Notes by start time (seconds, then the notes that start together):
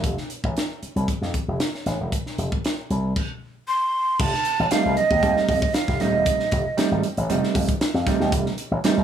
0.04 F1, kick, closed hi-hat
0.17 snare
0.30 closed hi-hat
0.44 A1, kick
0.57 snare, closed hi-hat
0.82 muted slap bass stroke, closed hi-hat
0.96 C2, closed hi-hat
1.08 kick, closed hi-hat
1.22 F2, snare
1.34 kick, closed hi-hat
1.48 F1
1.60 snare, closed hi-hat
1.75 snare
1.86 A1, snare, closed hi-hat
2.00 E1
2.12 kick, closed hi-hat
2.26 snare
2.38 F1, closed hi-hat
2.52 kick
2.65 snare, closed hi-hat
2.90 C2, closed hi-hat
3.16 kick, crash
3.68 C6
4.19 F1 A5, kick, crash
4.33 snare
4.45 closed hi-hat
4.59 A1
4.71 G3 A3 C4 D#4 F5, muted slap bass stroke, snare, closed hi-hat
4.85 C2
4.97 D#5, closed hi-hat
5.11 D#2, kick
5.23 D#2 G3 A3 C4 D#4, kick, closed hi-hat
5.37 snare
5.48 F2 D#5, kick, open hi-hat
5.62 kick
5.74 F5, snare, closed hi-hat
5.88 F1, kick, snare
6.00 D#1 G3 A3 C4 D#4 D#5, snare, closed hi-hat
6.14 E1
6.26 kick, closed hi-hat
6.40 snare
6.51 F1, kick, closed hi-hat
6.77 G3 A3 C4 D#4, muted slap bass stroke, snare, closed hi-hat
6.91 G#1
7.03 closed hi-hat
7.17 A1, closed hi-hat
7.29 F1 G3 A3 C4 D#4, closed hi-hat
7.43 snare
7.55 F2, kick, open hi-hat
7.69 kick, closed hi-hat
7.81 snare, closed hi-hat
7.94 F2, snare
8.07 G3 A3 C4 D#4, kick, snare, closed hi-hat
8.20 D#2, snare
8.32 F1, kick, closed hi-hat
8.46 snare
8.58 closed hi-hat
8.71 A1
8.84 G3 A3 C4 D#4, muted slap bass stroke, snare, closed hi-hat
8.97 C2